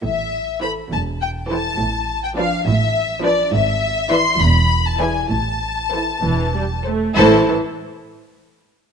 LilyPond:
<<
  \new Staff \with { instrumentName = "Violin section" } { \time 6/8 \key a \minor \tempo 4. = 67 e''4 b''8 a''8 g''8 a''8~ | a''8. g''16 f''8 e''4 d''8 | e''4 c'''8 b''8. a''16 gis''8 | a''2~ a''8 r8 |
a''8 r2 r8 | }
  \new Staff \with { instrumentName = "Violin section" } { \time 6/8 \key a \minor r4 <a' c''>8 r4 <a' c''>8 | r4 <b' d''>8 r4 <b' d''>8 | r4 <b' d''>8 r4 <gis' d''>8 | r4 <a' c''>8 r4 <a' c''>8 |
<a' c''>8 r2 r8 | }
  \new Staff \with { instrumentName = "Viola section" } { \clef bass \time 6/8 \key a \minor r4 <e e'>8 r4 <e e'>8 | r4 <f d'>8 r4 <f d'>8 | r4 <e e'>8 r4 <e e'>8 | r4 <e e'>8 e8 g8 a8 |
<e e'>8 r2 r8 | }
  \new Staff \with { instrumentName = "Cello section" } { \clef bass \time 6/8 \key a \minor a,4. e,4. | a,4. a,4. | gis,4. e,4. | a,4. e,4. |
a,8 r2 r8 | }
  \new Staff \with { instrumentName = "Double bass section" } { \clef bass \time 6/8 \key a \minor a,,4. e,,4. | a,,4. a,,4. | gis,,4. e,,4. | a,,4. e,,4. |
a,,8 r2 r8 | }
>>